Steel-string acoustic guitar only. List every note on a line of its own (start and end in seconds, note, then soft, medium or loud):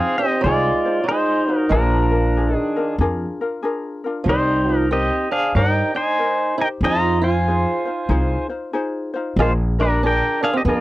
0.00 0.17 C4 medium
0.19 0.42 C4 medium
0.41 1.02 G#3 medium
1.04 1.51 G#3 medium
1.51 1.66 F#3 medium
1.69 2.54 F3 medium
2.54 2.94 D#3 medium
4.24 4.71 G3 medium
4.71 4.85 F3 medium
4.91 5.28 C4 medium
5.31 5.53 D4 medium
5.56 5.92 D#4 medium
5.95 6.54 D#4 medium
6.58 6.64 D#4 medium
6.85 7.20 F4 medium
7.22 8.45 F4 medium
9.39 9.49 G#3 medium
9.80 10.01 G3 medium
10.03 10.39 D4 medium
10.43 10.53 D4 medium
10.53 10.58 C4 medium
10.65 10.80 A#3 medium